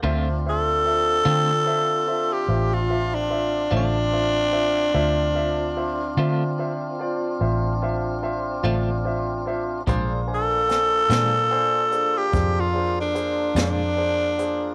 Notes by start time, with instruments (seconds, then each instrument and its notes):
0.03 fingered electric bass D2, clean electric guitar D3 A3 C4 F4, tonewheel organ C4 D4 F4, upright piano F4 C5 E5
0.46 upright piano F4 C5 E5, tenor saxophone A4
0.85 upright piano F4 C5 E5
1.25 fingered electric bass D3, clean electric guitar D3 A3 C4 F4, upright piano F4 C5 G5
1.66 upright piano F4 C5 E5
2.07 upright piano F4 C5 E5
2.33 tenor saxophone G4
2.48 fingered electric bass A1, upright piano F4 C5 E5
2.73 tenor saxophone F4
2.89 upright piano F4 C5 E5
3.14 tenor saxophone D4
3.30 upright piano F4 C5 E5
3.71 fingered electric bass A1, clean electric guitar D3 A3 C4 F4, upright piano F4 C5 E5
3.76 tenor saxophone D4
4.11 upright piano F4 C5 E5
4.52 upright piano F4 C5 E5
4.94 fingered electric bass D2, tonewheel organ C4 D4 F4, upright piano F4 C5 E5
5.35 upright piano F4 C5 E5
5.76 upright piano F4 C5 E5
6.17 fingered electric bass D3, clean electric guitar D3 A3 C4 F4, upright piano F4 C5 E5
6.59 upright piano F4 C5 E5
6.99 upright piano F4 C5 D5
7.40 fingered electric bass A1, upright piano F4 C5 E5
7.82 upright piano F4 C5 E5
8.22 upright piano F4 C5 E5
8.63 fingered electric bass A1, clean electric guitar D3 A3 C4 F4, upright piano F4 C5 E5
9.05 upright piano F4 C5 E5
9.46 upright piano F4 C5 E5
9.87 fingered electric bass A#1, clean electric guitar A#2 G#3 D4 F4, tonewheel organ A#3 D4 F4, upright piano D4 G#4 C5, kick, closed hi-hat
10.27 upright piano D4 C5 G#5
10.34 tenor saxophone A4
10.69 upright piano D4 C5 G#5, snare, closed hi-hat
11.10 fingered electric bass A#2, clean electric guitar A#2 G#3 D4 F4, upright piano D4 C5 G#5, snare, closed hi-hat
11.50 upright piano D4 C5 G#5
11.92 upright piano D4 G#4 C5, closed hi-hat
12.18 tenor saxophone G4
12.32 fingered electric bass F2, upright piano D4 G#4 C5, kick, closed hi-hat
12.60 tenor saxophone F4
12.73 upright piano D4 G#4 C5
13.01 tenor saxophone D4
13.14 upright piano D4 G#4 C5, closed hi-hat
13.55 fingered electric bass F2, clean electric guitar A#2 G#3 D4 F4, upright piano D4 G#4 C5, snare, closed hi-hat
13.62 tenor saxophone D4
13.96 upright piano D4 G#4 C5
14.38 upright piano D4 G#4 C5, closed hi-hat